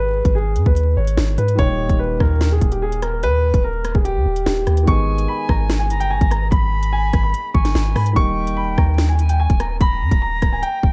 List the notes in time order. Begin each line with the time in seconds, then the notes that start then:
Already playing: G#1 D#3 G#3 B3 D#4 G#4 B4
0.25 G#1, kick, closed hi-hat
0.35 G#4
0.56 G#2, closed hi-hat
0.66 D#2 B4, kick
0.76 closed hi-hat
0.97 G#1 C#5
1.07 closed hi-hat
1.17 G#1, snare
1.38 G#2 B4, closed hi-hat
1.48 closed hi-hat
1.55 D#1 A#2 D#3 G3 C#5, kick, closed hi-hat
1.61 D#4 G4
1.79 E1
1.89 D#1, kick, closed hi-hat
1.99 B4
2.20 D#2 A#4, kick, cross-stick
2.41 snare, closed hi-hat
2.52 G#4
2.61 D#1, kick, closed hi-hat
2.72 G4, closed hi-hat
2.82 G#4
2.92 closed hi-hat
3.02 A#4, cross-stick, closed hi-hat
3.23 D#2 B4, closed hi-hat
3.54 D#1, kick, closed hi-hat
3.64 A#4
3.85 cross-stick, closed hi-hat
3.95 D#1 G#4, kick
4.05 G4, closed hi-hat
4.16 D#2
4.26 D#1
4.36 closed hi-hat
4.46 D#1 G4, snare
4.67 D#2, cross-stick, closed hi-hat
4.77 closed hi-hat
4.83 D#3 G#3 B3
4.87 G#1 D#4 G#4 G#5 C#6, kick, closed hi-hat
5.18 closed hi-hat
5.28 B5
5.49 G#1 A#5, kick, cross-stick
5.70 snare, closed hi-hat
5.79 G#5
5.90 G1 A#5, closed hi-hat
6.00 G5, closed hi-hat
6.10 G#5
6.21 G#1, kick, closed hi-hat
6.31 A#5, cross-stick, closed hi-hat
6.51 G#1 B5, kick, closed hi-hat
6.83 closed hi-hat
6.93 G#5
7.13 G#1, kick, cross-stick, closed hi-hat
7.23 B5
7.34 closed hi-hat
7.54 G#1 G#5 C#6, kick
7.65 snare, closed hi-hat
7.75 G#1, snare
7.95 G#2 B5, cross-stick, open hi-hat
8.06 closed hi-hat
8.13 D#1 D#3 G3 A#3 G5 C#6, kick, closed hi-hat
8.18 D#4
8.47 E1, closed hi-hat
8.57 B5
8.62 D#1
8.78 D#2 A#5, kick, cross-stick
8.98 snare, closed hi-hat
9.09 G#5
9.19 G#5, closed hi-hat
9.29 G5, closed hi-hat
9.40 G#5
9.50 D#1, kick, closed hi-hat
9.60 A#5, cross-stick, closed hi-hat
9.81 D#1 A#5 B5, kick, closed hi-hat
10.01 G2
10.11 D#1, kick, closed hi-hat
10.22 A#5
10.42 C#1, kick, cross-stick, closed hi-hat
10.53 G#5
10.62 G5, closed hi-hat
10.83 D#1 G5, kick